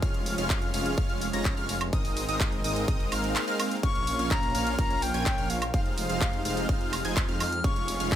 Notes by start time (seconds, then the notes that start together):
Already playing: F3
0.02 F1 G#3 C#4 F4 C#5 F5 F6, kick, closed hi-hat
0.14 closed hi-hat
0.26 open hi-hat
0.38 F1 G#3 C#4 F4 C#5 F5 F6, closed hi-hat
0.50 kick, clap, closed hi-hat
0.62 closed hi-hat
0.74 F1 G#3 C#4 F4 C#5 F5 F6, open hi-hat
0.86 closed hi-hat
0.98 F1 G#3 C#4 F4 C#5 F5 F6, kick, closed hi-hat
1.10 closed hi-hat
1.21 open hi-hat
1.33 F1 G#3 C#4 F4 C#5 A#5 A#6, closed hi-hat
1.45 kick, clap, closed hi-hat
1.57 F1 G#3 C#4 F4 C#5 F5 F6, closed hi-hat
1.69 open hi-hat
1.81 closed hi-hat, high woodblock
1.93 G#1 G#3 A#3 C4 D#4 A#4 D#5 D#6, kick, closed hi-hat
2.05 open hi-hat
2.17 open hi-hat
2.29 G#1 G#3 C4 D#4 A#4 D#5 D#6, closed hi-hat
2.40 kick, clap, closed hi-hat
2.52 closed hi-hat
2.64 G#1 G#3 C4 D#4 A#4 D#5 D#6, open hi-hat
2.76 closed hi-hat
2.88 G#1 G#3 C4 D#4 A#4 D#5 D#6, kick, closed hi-hat
3.00 closed hi-hat
3.12 G#1 G#3 C4 D#4 A#4 F5 F6, open hi-hat, high woodblock
3.24 closed hi-hat
3.36 clap, closed hi-hat, high woodblock
3.48 G#3 C4 D#4 A#4 F5 F6, closed hi-hat
3.60 open hi-hat, high woodblock
3.71 closed hi-hat
3.83 A#1 F3 A#3 C#4 F4 C#5 F5 C#6 F6, kick, closed hi-hat
3.95 closed hi-hat
4.07 open hi-hat
4.19 A#1 A#3 C#4 F4 C#5 F5 F6, closed hi-hat
4.31 A#5, kick, clap, closed hi-hat
4.43 closed hi-hat
4.55 A#1 A#3 C#4 F4 C#5 F5 F6, open hi-hat
4.67 closed hi-hat
4.79 A#1 A#3 C#4 F4 C#5 F5 A#5 F6, kick, closed hi-hat
4.90 closed hi-hat
5.02 G5, open hi-hat
5.14 A#1 A#3 C#4 F4 C#5 G#5 G#6, closed hi-hat
5.26 kick, clap, closed hi-hat
5.38 A#1 A#3 C#4 F4 C#5 F5 F6, closed hi-hat
5.50 F5, open hi-hat
5.62 closed hi-hat, high woodblock
5.74 F1 G#3 C4 D#4 F4 G4 G#4 C5 F5 F6, kick, closed hi-hat
5.86 closed hi-hat
5.98 F5, open hi-hat
6.09 F1 G#3 D#4 F4 C5 F5 F6, closed hi-hat
6.21 kick, clap, closed hi-hat
6.33 closed hi-hat
6.45 F1 G#3 D#4 F4 C5 F5 F6, open hi-hat
6.57 closed hi-hat
6.69 F1 G#3 D#4 F4 C5 F5 F6, kick, closed hi-hat
6.81 closed hi-hat
6.93 open hi-hat, high woodblock
7.05 F1 G#3 D#4 F4 C5 G#5 G#6, closed hi-hat
7.17 kick, clap, closed hi-hat, high woodblock
7.28 F2 G#3 D#4 F4 C5 F5 F6, closed hi-hat
7.40 F6, open hi-hat, high woodblock
7.52 closed hi-hat
7.64 F1 G#3 C#4 F4 C#5 F5 C#6 F6, kick, closed hi-hat
7.76 closed hi-hat
7.88 open hi-hat
8.00 F1 G#3 C#4 F4 C#5 F5 F6, closed hi-hat
8.12 G#5, kick, clap, closed hi-hat